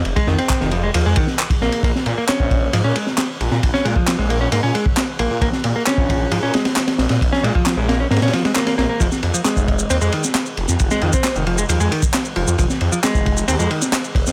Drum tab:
RD |x-x---x-x---x---x---x---x-x---x-|x---x---x---x---x---x---x---x---|x---x---x---x---x---x---x---x---|x---x---x---x---x---x-x-x-x-x-x-|
SH |--------------------------------|--------------------------------|--------------------------------|--------------------------------|
CP |--------x---------------x-------|--------x---------------x-------|--------x---------------x-------|--------x---------------x-------|
SD |----o-----o-----------o-----o---|--o-----o-------------o-o-----o-|--o-----o---------------o-------|--o-----o-----------o-o-o-o-o-o-|
BD |--o-----o-----------o-----o-----|o---------o-o-------------------|o-----o---------------o---------|o---------o-o-------------------|

RD |x---x---x---x---xxxxx-x-x-x-x---|x---x---x---x---x---x---x---x---|x---x---x---x---x---x---x---x---|x---x---x---x---x---x---x---x---|
SH |--------------------------------|x-x---x-x-x---x-x-x---x-x-x---x-|x-x---x-x-x---x-x-x---x-x-x---x-|x-x---x-x-x---x-x-x---x-x-x---x-|
CP |--------x---------------x-------|--------x---------------x-------|--------x---------------x-------|--------x---------------x-------|
SD |--o-----o---o---ooooo-o-o-o-o---|--o-----o-------------o-o-----o-|--o-----o---------------o-------|--o-----o-------------o-o-----o-|
BD |o-----o-------------------------|o---------o-o-------------------|o-----o---------------o---------|o---------o-o---------------o---|